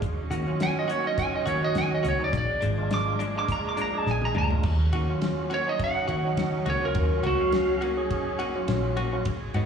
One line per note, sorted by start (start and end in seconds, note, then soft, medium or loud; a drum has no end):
0.01 0.26 D#2 loud
0.01 2.31 F#3 medium
0.01 2.31 C#4 medium
0.01 2.31 D#4 medium
0.01 kick medium
0.01 closed hi-hat medium
0.30 1.28 D#3 loud
0.30 0.51 A#3 medium
0.30 0.50 C#4 medium
0.30 0.49 F#4 medium
0.30 closed hi-hat medium
0.46 0.89 F#3 medium
0.46 0.89 C#4 medium
0.46 0.89 F4 medium
0.60 0.77 G#5 medium
0.60 snare loud
0.60 closed hi-hat medium
0.79 0.91 D#5 medium
0.88 1.08 A#3 medium
0.88 1.07 C#4 medium
0.88 1.07 F#4 medium
0.88 1.05 C#5 loud
0.88 closed hi-hat medium
1.04 1.46 F#3 medium
1.04 1.46 C#4 medium
1.04 1.46 F4 medium
1.04 1.19 D#5 medium
1.18 1.34 G#5 loud
1.18 kick medium
1.18 closed hi-hat medium
1.36 1.47 D#5 medium
1.46 1.71 D#3 medium
1.46 1.66 A#3 medium
1.46 1.65 C#4 medium
1.46 1.65 F#4 medium
1.46 1.64 C#5 medium
1.46 closed hi-hat medium
1.62 2.04 F#3 medium
1.62 2.04 C#4 medium
1.62 2.04 F#4 loud
1.62 1.76 D#5 medium
1.75 2.00 D#3 loud
1.75 1.92 G#5 loud
1.75 snare loud
1.75 closed hi-hat medium
1.95 2.06 D#5 medium
2.03 2.18 C#2 medium
2.03 2.23 A#3 medium
2.03 2.23 C#4 medium
2.03 2.22 F#4 medium
2.03 closed hi-hat medium
2.08 2.22 C#5 medium
2.19 2.33 F#3 medium
2.19 2.33 C#4 medium
2.19 2.33 D#4 medium
2.24 2.35 D5 medium
2.33 2.46 A#1 medium
2.33 4.62 A#3 medium
2.33 4.62 D4 medium
2.33 4.62 G#4 medium
2.33 kick loud
2.33 closed hi-hat medium
2.37 2.63 D5 medium
2.61 3.59 G#1 loud
2.61 2.81 F3 medium
2.61 2.81 G#3 medium
2.61 2.80 D4 medium
2.61 closed hi-hat medium
2.78 3.20 G#3 medium
2.78 3.20 D4 medium
2.78 3.20 F4 loud
2.91 3.21 D6 loud
2.91 snare loud
2.91 closed hi-hat medium
3.19 3.39 F3 medium
3.19 3.39 G#3 medium
3.19 3.38 D4 medium
3.19 closed hi-hat medium
3.35 3.77 G#3 medium
3.35 3.77 D4 medium
3.35 3.78 F4 medium
3.35 3.50 D6 medium
3.48 3.66 A#5 medium
3.48 kick medium
3.48 closed hi-hat medium
3.69 3.79 D6 medium
3.77 3.97 F3 medium
3.77 3.96 G#3 medium
3.77 3.96 D4 medium
3.77 closed hi-hat medium
3.82 3.98 A#5 medium
3.93 4.35 G#3 medium
3.93 4.35 D4 medium
3.93 4.35 G#4 medium
3.98 4.08 A5 medium
4.06 4.32 A#1 medium
4.06 snare medium
4.11 4.24 G#5 medium
4.22 4.37 A#5 loud
4.22 high tom medium
4.35 4.61 D2 medium
4.35 4.55 F3 medium
4.35 4.54 G#3 medium
4.35 4.54 D4 medium
4.35 4.65 A#5 loud
4.35 mid tom medium
4.51 4.64 G#3 medium
4.51 4.64 D4 medium
4.51 4.65 F4 loud
4.51 floor tom medium
4.63 4.88 D#2 loud
4.63 9.66 F#3 medium
4.63 9.22 C#4 medium
4.63 9.22 D#4 medium
4.63 kick medium
4.63 crash medium
4.93 5.90 D#3 loud
4.93 5.13 A#3 medium
4.93 5.12 C#4 medium
4.93 5.11 F#4 medium
4.93 ride medium
5.09 5.51 F#3 medium
5.09 5.51 C#4 medium
5.09 5.51 F4 loud
5.22 snare loud
5.22 ride medium
5.50 5.70 A#3 medium
5.50 5.70 C#4 medium
5.50 5.69 F#4 medium
5.50 5.69 C#5 medium
5.50 ride medium
5.66 6.08 F#3 medium
5.66 6.09 C#4 medium
5.66 6.09 D#4 medium
5.66 5.81 D#5 medium
5.79 kick medium
5.79 ride medium
5.84 6.66 F#5 loud
6.08 6.33 D#3 medium
6.08 6.28 A#3 medium
6.08 6.27 C#4 medium
6.08 6.27 F#4 medium
6.08 ride medium
6.24 6.66 F#3 medium
6.24 6.66 C#4 medium
6.24 6.67 D#4 medium
6.37 6.62 D#3 loud
6.37 snare loud
6.37 ride medium
6.66 6.79 C#2 loud
6.66 6.86 A#3 medium
6.66 6.85 C#4 medium
6.66 6.84 F#4 medium
6.66 6.83 C#5 medium
6.66 ride medium
6.82 7.24 F#3 medium
6.82 7.24 C#4 medium
6.82 7.24 F4 loud
6.82 7.24 A#4 medium
6.95 7.08 D#2 medium
6.95 kick loud
6.95 ride medium
7.23 8.21 C#2 medium
7.23 7.43 A#3 soft
7.23 7.43 C#4 medium
7.23 7.42 F#4 medium
7.23 7.81 F#4 loud
7.23 ride medium
7.40 7.82 F#3 medium
7.40 7.82 C#4 medium
7.40 7.82 F5 medium
7.52 snare loud
7.52 ride medium
7.81 8.01 A#3 medium
7.81 8.00 C#4 medium
7.81 8.00 F#4 medium
7.81 ride medium
7.97 8.39 F#3 medium
7.97 8.39 C#4 medium
7.97 8.39 G#4 loud
8.11 kick medium
8.11 ride medium
8.39 8.59 A#3 medium
8.39 8.58 C#4 medium
8.39 8.58 F#4 medium
8.39 ride medium
8.56 8.97 F#3 medium
8.56 8.97 C#4 medium
8.56 8.97 F4 loud
8.68 9.26 A#1 loud
8.68 snare loud
8.68 ride medium
8.97 9.16 A#3 medium
8.97 9.16 C#4 medium
8.97 9.15 F#4 medium
8.97 ride medium
9.13 9.26 F#3 loud
9.13 9.26 C#4 medium
9.13 9.26 F4 loud
9.25 9.50 G#1 loud
9.25 9.66 G#3 medium
9.25 9.66 G#4 medium
9.25 kick loud
9.25 ride medium
9.54 9.66 G#2 loud
9.54 9.66 D#3 medium
9.54 9.66 B3 medium
9.54 9.66 D#4 medium
9.54 9.66 F#4 medium
9.54 ride medium